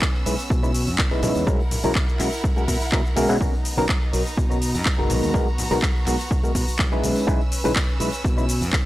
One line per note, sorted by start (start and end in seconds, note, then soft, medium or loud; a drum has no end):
0.00 1.43 B3 medium
0.00 1.45 C#4 medium
0.00 1.45 E6 medium
0.00 kick loud
0.00 clap loud
0.00 shaker soft
0.15 tambourine soft
0.26 0.35 B1 medium
0.26 0.34 G#3 medium
0.26 0.34 C#4 medium
0.26 0.34 D#4 medium
0.26 0.34 E4 medium
0.26 0.34 B4 medium
0.26 open hi-hat loud
0.26 shaker medium
0.39 tambourine medium
0.39 shaker soft
0.50 0.89 B2 medium
0.50 kick loud
0.50 tambourine medium
0.50 shaker soft
0.63 0.70 G#3 medium
0.63 0.70 C#4 medium
0.63 0.70 D#4 medium
0.63 0.70 E4 medium
0.63 0.70 B4 medium
0.63 tambourine soft
0.63 high conga medium
0.63 shaker soft
0.74 open hi-hat loud
0.74 shaker medium
0.87 0.95 F#2 medium
0.87 tambourine medium
0.87 shaker soft
0.98 kick loud
0.98 clap loud
0.98 shaker soft
1.11 1.19 B1 medium
1.11 1.44 G#3 medium
1.11 1.44 C#4 medium
1.11 1.44 D#4 medium
1.11 1.44 E4 medium
1.11 1.44 B4 loud
1.11 tambourine soft
1.23 1.32 B1 loud
1.23 open hi-hat loud
1.23 high conga loud
1.23 low conga medium
1.23 shaker medium
1.35 1.43 E2 medium
1.35 tambourine medium
1.35 shaker soft
1.47 1.56 B1 loud
1.47 1.60 G#3 medium
1.47 1.60 C#4 medium
1.47 1.60 E4 medium
1.47 3.39 E4 medium
1.47 1.60 F#4 medium
1.47 1.60 A#4 loud
1.47 3.39 A#4 medium
1.47 3.39 F#5 loud
1.47 kick loud
1.47 tambourine medium
1.47 shaker soft
1.60 tambourine soft
1.71 open hi-hat loud
1.71 low conga medium
1.71 shaker medium
1.84 1.92 B1 medium
1.84 1.91 G#3 medium
1.84 1.91 C#4 medium
1.84 1.91 E4 medium
1.84 1.91 F#4 medium
1.84 1.91 A#4 loud
1.84 tambourine medium
1.84 high conga loud
1.84 shaker soft
1.95 kick loud
1.95 clap loud
1.95 tambourine medium
1.95 shaker soft
2.08 tambourine soft
2.08 shaker soft
2.19 2.28 B1 medium
2.19 2.27 G#3 medium
2.19 2.28 C#4 medium
2.19 2.28 E4 medium
2.19 2.28 F#4 medium
2.19 2.28 A#4 medium
2.19 clap soft
2.19 open hi-hat loud
2.19 shaker medium
2.32 tambourine medium
2.32 shaker soft
2.44 kick loud
2.44 shaker soft
2.56 2.64 G#3 medium
2.56 2.64 C#4 medium
2.56 2.64 E4 medium
2.56 2.64 F#4 medium
2.56 2.64 A#4 medium
2.56 tambourine soft
2.56 high conga medium
2.56 shaker soft
2.68 2.77 B2 medium
2.68 kick medium
2.68 open hi-hat loud
2.68 shaker medium
2.81 muted fingered electric bass stroke soft
2.81 tambourine medium
2.81 shaker soft
2.92 3.01 B2 medium
2.92 3.00 G#3 loud
2.92 3.00 C#4 medium
2.92 3.00 E4 medium
2.92 3.00 F#4 medium
2.92 3.01 A#4 loud
2.92 kick loud
2.92 clap loud
2.92 shaker soft
3.05 tambourine soft
3.05 shaker soft
3.16 3.25 B2 medium
3.16 3.27 G#3 loud
3.16 3.27 C#4 loud
3.16 3.27 E4 medium
3.16 3.27 F#4 medium
3.16 3.28 A#4 loud
3.16 open hi-hat loud
3.16 high conga medium
3.16 shaker medium
3.29 3.37 B2 medium
3.29 3.36 G#3 medium
3.29 3.36 C#4 medium
3.29 3.36 E4 medium
3.29 3.37 F#4 medium
3.29 3.37 G#4 loud
3.29 tambourine medium
3.29 shaker soft
3.40 3.49 B1 loud
3.40 3.53 B3 medium
3.40 7.00 B3 medium
3.40 3.53 C#4 medium
3.40 5.08 D#4 medium
3.40 3.54 D#4 medium
3.40 3.54 F#4 medium
3.40 3.54 A#4 loud
3.40 7.00 A#5 medium
3.40 kick loud
3.40 tambourine medium
3.40 shaker soft
3.53 tambourine soft
3.65 open hi-hat loud
3.65 shaker medium
3.77 3.85 B1 medium
3.77 3.85 B3 medium
3.77 3.85 C#4 medium
3.77 3.85 D#4 medium
3.77 3.85 F#4 medium
3.77 3.85 A#4 loud
3.77 tambourine medium
3.77 high conga loud
3.77 shaker soft
3.89 kick loud
3.89 clap loud
3.89 shaker soft
4.02 tambourine soft
4.13 4.22 B1 medium
4.13 4.21 B3 medium
4.13 4.21 C#4 medium
4.13 4.21 D#4 medium
4.13 4.21 F#4 medium
4.13 4.21 A#4 medium
4.13 open hi-hat loud
4.13 shaker medium
4.26 tambourine medium
4.26 shaker soft
4.37 4.76 B2 medium
4.37 kick loud
4.37 shaker soft
4.50 4.57 B3 medium
4.50 4.57 C#4 medium
4.50 4.57 D#4 medium
4.50 4.57 F#4 medium
4.50 4.57 A#4 medium
4.50 tambourine soft
4.50 high conga medium
4.50 shaker soft
4.62 open hi-hat loud
4.62 shaker medium
4.74 4.82 F#2 medium
4.74 tambourine medium
4.74 shaker soft
4.86 kick loud
4.86 clap loud
4.86 tambourine medium
4.86 shaker soft
4.98 5.06 F#1 medium
4.98 5.31 G#3 medium
4.98 5.31 B3 medium
4.98 5.31 D#4 medium
4.98 5.31 F#4 medium
4.98 5.32 A#4 loud
4.98 tambourine soft
5.10 5.19 B1 loud
5.10 7.02 F#4 medium
5.10 open hi-hat loud
5.10 high conga medium
5.10 low conga medium
5.10 shaker medium
5.23 5.31 D#2 medium
5.23 tambourine medium
5.23 shaker soft
5.34 5.43 B1 loud
5.34 5.47 G#3 medium
5.34 5.47 B3 medium
5.34 5.47 D#4 medium
5.34 5.47 F#4 medium
5.34 5.47 A#4 loud
5.34 kick loud
5.34 tambourine medium
5.34 shaker soft
5.48 tambourine soft
5.58 open hi-hat loud
5.58 low conga medium
5.58 shaker medium
5.71 5.79 B1 medium
5.71 5.78 G#3 medium
5.71 5.78 B3 medium
5.71 5.78 D#4 medium
5.71 5.78 F#4 medium
5.71 5.78 A#4 loud
5.71 tambourine medium
5.71 high conga medium
5.71 shaker soft
5.82 kick loud
5.82 clap loud
5.82 tambourine medium
5.82 shaker soft
5.96 tambourine soft
6.06 6.15 B1 medium
6.06 6.15 G#3 medium
6.06 6.15 B3 medium
6.06 6.15 D#4 medium
6.06 6.15 F#4 medium
6.06 6.15 A#4 medium
6.06 clap soft
6.06 open hi-hat loud
6.06 shaker medium
6.19 tambourine medium
6.19 shaker soft
6.31 kick loud
6.31 shaker soft
6.43 6.51 G#3 medium
6.43 6.51 B3 medium
6.43 6.51 D#4 medium
6.43 6.51 F#4 medium
6.43 6.51 A#4 medium
6.43 tambourine soft
6.43 high conga medium
6.43 shaker soft
6.55 6.64 B2 medium
6.55 kick medium
6.55 open hi-hat loud
6.55 shaker medium
6.68 muted fingered electric bass stroke soft
6.68 tambourine medium
6.68 shaker soft
6.79 6.96 B1 medium
6.79 kick loud
6.79 clap loud
6.79 shaker soft
6.92 7.25 G#3 medium
6.92 7.25 C#4 medium
6.92 7.25 D#4 medium
6.92 7.25 E4 medium
6.92 7.25 B4 loud
6.92 tambourine soft
7.03 7.12 B1 medium
7.03 8.86 C#4 medium
7.03 8.86 B4 medium
7.03 8.86 E6 medium
7.03 open hi-hat loud
7.03 high conga medium
7.03 shaker medium
7.16 tambourine medium
7.16 shaker soft
7.27 7.36 B1 loud
7.27 7.40 G#3 loud
7.27 7.40 C#4 medium
7.27 7.40 D#4 medium
7.27 7.41 E4 medium
7.27 7.41 B4 loud
7.27 kick loud
7.27 shaker soft
7.41 tambourine soft
7.52 open hi-hat loud
7.52 shaker medium
7.64 7.72 B1 medium
7.64 7.72 G#3 medium
7.64 7.72 C#4 medium
7.64 7.72 D#4 medium
7.64 7.72 E4 medium
7.64 7.72 B4 loud
7.64 tambourine medium
7.64 high conga medium
7.64 shaker soft
7.76 kick loud
7.76 clap loud
7.76 tambourine medium
7.76 shaker soft
7.89 tambourine soft
8.00 8.09 B1 medium
8.00 8.08 G#3 medium
8.00 8.08 C#4 medium
8.00 8.08 D#4 medium
8.00 8.08 E4 medium
8.00 8.09 B4 medium
8.00 open hi-hat medium
8.00 shaker medium
8.12 tambourine medium
8.12 shaker soft
8.24 8.63 B2 medium
8.24 kick loud
8.24 tambourine medium
8.24 shaker soft
8.37 8.44 G#3 medium
8.37 8.44 C#4 medium
8.37 8.44 D#4 medium
8.37 8.44 E4 medium
8.37 8.45 B4 loud
8.37 tambourine soft
8.37 high conga medium
8.37 shaker soft
8.49 open hi-hat loud
8.49 shaker medium
8.61 8.69 F#2 medium
8.61 tambourine medium
8.61 shaker soft
8.73 kick loud
8.73 clap loud
8.73 shaker soft